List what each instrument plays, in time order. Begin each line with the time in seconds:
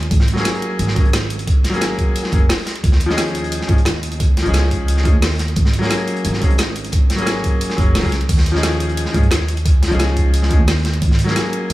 0.03 closed hi-hat
0.11 upright bass G#1, kick, closed hi-hat
0.20 snare
0.28 closed hi-hat
0.33 grand piano F#3 A#3, snare
0.38 grand piano C#4 G#4
0.45 snare, closed hi-hat
0.55 closed hi-hat
0.62 closed hi-hat
0.79 upright bass G#1, closed hi-hat
0.87 snare
0.95 grand piano F#3 A#3 C#4 G#4, kick, closed hi-hat
1.05 closed hi-hat
1.13 snare, closed hi-hat
1.30 closed hi-hat
1.39 closed hi-hat
1.47 kick, closed hi-hat
1.64 snare, closed hi-hat
1.70 grand piano F#3 A#3, closed hi-hat
1.74 grand piano C#4 G#4
1.81 snare, closed hi-hat
1.98 kick, closed hi-hat
2.16 closed hi-hat
2.23 snare
2.31 upright bass F#1, grand piano F#3 A#3 C#4 G#4, kick, closed hi-hat
2.49 snare, closed hi-hat, open hi-hat
2.66 snare, closed hi-hat
2.76 closed hi-hat
2.84 upright bass D#2, kick, closed hi-hat
2.92 snare
3.00 closed hi-hat
3.06 grand piano F3 C#4, snare
3.10 grand piano D#4 G#4
3.18 snare, closed hi-hat
3.26 closed hi-hat
3.35 closed hi-hat
3.44 closed hi-hat
3.52 closed hi-hat
3.61 snare
3.67 upright bass G#2, grand piano F3 C#4 D#4 G#4, kick, closed hi-hat
3.78 closed hi-hat
3.85 upright bass D#2, snare, closed hi-hat
4.03 closed hi-hat
4.12 closed hi-hat
4.20 kick, closed hi-hat
4.37 snare, closed hi-hat
4.42 upright bass C#2, grand piano F3 C#4, closed hi-hat
4.47 grand piano D#4 G#4
4.54 snare, closed hi-hat
4.71 kick, closed hi-hat
4.88 closed hi-hat
4.97 snare
5.04 grand piano F3 C#4 D#4 G#4, kick, closed hi-hat
5.14 upright bass D#2
5.22 snare, closed hi-hat, open hi-hat
5.39 snare, closed hi-hat
5.48 closed hi-hat
5.56 upright bass G#1, kick, closed hi-hat
5.65 snare
5.73 closed hi-hat
5.79 grand piano F#3 A#3, snare
5.83 grand piano C#4 G#4
5.90 snare, closed hi-hat
5.99 closed hi-hat
6.08 closed hi-hat
6.16 closed hi-hat
6.25 upright bass G#1, closed hi-hat
6.33 snare
6.40 grand piano F#3 A#3 C#4 G#4, kick, closed hi-hat
6.50 closed hi-hat
6.58 snare, closed hi-hat
6.76 closed hi-hat
6.84 closed hi-hat
6.92 kick, closed hi-hat
7.10 snare, closed hi-hat
7.15 grand piano F#3 A#3, closed hi-hat
7.20 grand piano C#4 G#4
7.26 snare, closed hi-hat
7.44 kick, closed hi-hat
7.61 closed hi-hat
7.70 snare
7.76 upright bass F#1, grand piano F#3 A#3 C#4 G#4, kick, closed hi-hat
7.95 upright bass C#2, snare, closed hi-hat, open hi-hat
8.02 grand piano F#3 A#3 C#4 G#4, kick
8.12 snare, closed hi-hat
8.21 closed hi-hat
8.29 upright bass D#2, kick, closed hi-hat, crash
8.37 snare
8.46 closed hi-hat
8.52 grand piano F3 C#4, snare
8.56 grand piano D#4 G#4
8.63 snare, closed hi-hat
8.71 closed hi-hat
8.80 closed hi-hat
8.89 closed hi-hat
8.97 closed hi-hat
9.05 snare
9.13 upright bass G#2, grand piano F3 C#4 D#4 G#4, kick, closed hi-hat
9.23 closed hi-hat
9.31 upright bass D#2, snare, closed hi-hat
9.48 closed hi-hat
9.57 closed hi-hat
9.65 kick, closed hi-hat
9.82 snare, closed hi-hat
9.88 upright bass C#2, grand piano F3 C#4, closed hi-hat
9.92 grand piano D#4 G#4
9.99 snare, closed hi-hat
10.17 kick, closed hi-hat
10.34 closed hi-hat
10.42 snare
10.49 grand piano F3 C#4 D#4 G#4, kick, closed hi-hat
10.59 upright bass D#2
10.67 snare, closed hi-hat, open hi-hat
10.85 snare, closed hi-hat
10.94 closed hi-hat
11.02 upright bass G#1, kick, closed hi-hat
11.11 snare
11.19 closed hi-hat
11.24 grand piano F#3 A#3, snare
11.29 grand piano C#4 G#4
11.36 snare, closed hi-hat
11.53 closed hi-hat
11.70 closed hi-hat